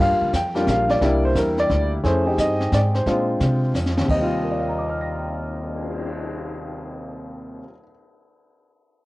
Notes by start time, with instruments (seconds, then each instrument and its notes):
Already playing: grand piano G3 A#3 D4 F4
0.00 upright bass G2, grand piano F5
0.10 upright bass F2
0.21 upright bass D2
0.33 upright bass F2, grand piano G5, kick, snare, hi-hat pedal
0.55 grand piano G3 A#3 D4 F4, snare
0.67 upright bass A#1, grand piano F5, kick, snare, hi-hat pedal
0.89 grand piano D5, snare
1.01 upright bass C2, grand piano G3 A#3 D4 E4, brush sweep, kick, snare
1.25 grand piano C5
1.35 upright bass E2, grand piano A#4, kick, snare, hi-hat pedal
1.58 grand piano D5, snare
1.70 upright bass D2, kick, snare
2.04 upright bass F2, grand piano A3 C#4 E4 G#4 C5, brush sweep, kick, snare
2.26 grand piano C4 D#4 G4 G#4
2.38 upright bass G2, grand piano D#5, kick, snare, hi-hat pedal
2.61 snare
2.72 upright bass G#2, grand piano D5, kick, snare, hi-hat pedal
2.95 grand piano C5, snare
3.06 upright bass A#2, grand piano G#3 C4 D4 F4, brush sweep, kick, snare
3.40 upright bass C3, kick, snare, hi-hat pedal
3.74 upright bass F2, snare, hi-hat pedal
3.86 snare
3.97 grand piano D#2, snare
4.06 upright bass D#2, grand piano C3, kick, crash
4.10 grand piano G3 D#5
4.22 grand piano F4
4.31 cymbal swell
4.44 grand piano A#4
4.52 grand piano D5
4.59 grand piano F5
4.69 grand piano A#5
4.78 grand piano D6
4.89 grand piano F6
5.01 grand piano A#6